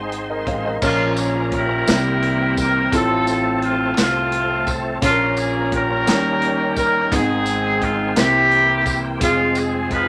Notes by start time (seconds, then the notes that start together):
Already playing: G#1 G#2 G#3 C4 D#4 G#4 C5
0.12 closed hi-hat
0.30 A#4 D#5
0.47 A1 C5 F5, kick, closed hi-hat
0.65 A#4 D#5
0.82 A#1 A#2 F3 A#3 C#4 F4 A#4, kick, crash, tambourine
1.16 G#4, closed hi-hat, tambourine
1.52 E4 A#4, kick, closed hi-hat
1.56 G4
1.87 C2 C3 E3 G3 A#3 C4 E4 G4 A#4, snare, closed hi-hat, tambourine
2.22 closed hi-hat
2.57 A#4, kick, closed hi-hat, tambourine
2.91 A1 A2 F3 A3 C4 F4 A4, kick, closed hi-hat, tambourine
2.95 C4 F4
3.27 A4, closed hi-hat, tambourine
3.62 F4, closed hi-hat
3.97 C2 A3 F4, snare, closed hi-hat, tambourine
4.01 C4
4.32 closed hi-hat
4.66 kick, closed hi-hat, tambourine
5.01 A#1 A#2 F3 A#3 C#4 F4 A4 A#4, kick, closed hi-hat, tambourine
5.10 A#4
5.37 G#4, closed hi-hat, tambourine
5.72 C#4 G4 A#4, kick, closed hi-hat
6.06 D#2 D#3 G3 A#3 C#4 D#4 G4 A#4, snare, closed hi-hat, tambourine
6.42 closed hi-hat
6.77 A#4, kick, closed hi-hat, tambourine
7.11 G#1 G#2 D#3 G#3 B3 C4 D#4 G#4, kick, closed hi-hat, tambourine
7.17 C4
7.46 closed hi-hat, tambourine
7.82 F4, kick, closed hi-hat
8.15 C2 C3 D3 A#3 C4 E4 G4 C5, snare, closed hi-hat, tambourine
8.19 E3 A#3 E4
8.51 closed hi-hat
8.86 kick, closed hi-hat, tambourine
9.20 F1 F3 G#3 C4 F4 F#4 G#4, kick, closed hi-hat, tambourine
9.28 G#4
9.55 G#4, closed hi-hat, tambourine
9.90 D#4 F4 B4, kick, closed hi-hat